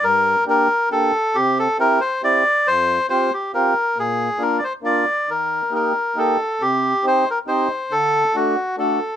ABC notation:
X:1
M:3/4
L:1/16
Q:1/4=137
K:Gm
V:1 name="Melodica"
B4 B4 A4 | G2 A2 B2 c2 d4 | c4 c2 G2 B4 | _A4 B3/2 d/2 c2 d4 |
B4 B4 A4 | G4 c2 B2 c4 | A4 ^F4 A4 |]
V:2 name="Accordion"
G,,4 [B,DG]2 z2 [B,DG]2 z2 | C,4 [C=EG]2 z2 [CEG]2 z2 | F,,4 [CFG]2 z2 [CFG]2 z2 | B,,4 [B,DF]2 z2 [B,DF]2 z2 |
E,4 [B,EG]2 z2 [B,EG]2 z2 | C,4 [CEG]2 z2 [CEG]2 z2 | D,4 [A,D^F]2 z2 [A,DF]2 z2 |]